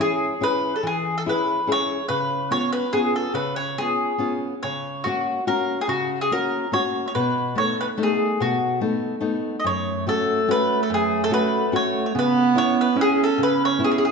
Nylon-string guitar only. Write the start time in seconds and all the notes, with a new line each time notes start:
0.00 C#4 E4 G#4
0.41 C#4 E4 G#4
0.83 E3
1.26 C#4 E4 G#4
1.67 C#4 E4 G#4
2.09 C#3
2.51 B3 C#4 F4
2.93 B3 C#4 F4
3.34 C#3
3.78 B3 C#4 F4
4.18 B3 C#4 F4
4.64 C#3
5.06 A#3 C#4 F#4
5.47 A#3 C#4 F#4
5.88 C#3
6.31 A#3 C#4 F#4
6.72 A#3 C#4 F#4
7.15 B2
7.55 A3 B3 D#4
7.98 A3 B3 D#4
8.40 B2
8.81 A3 B3 D#4
9.21 A3 B3 D#4
9.64 F#2
10.07 A3 C#4 F#4
10.48 A3 C#4 F#4
10.90 F#2
11.30 A3 C#4 F#4
11.72 A3 C#4 F#4
12.15 C#3
12.55 B3 C#4 E4
12.95 B3 C#4 E4
13.38 C#3
13.79 B3 C#4 E4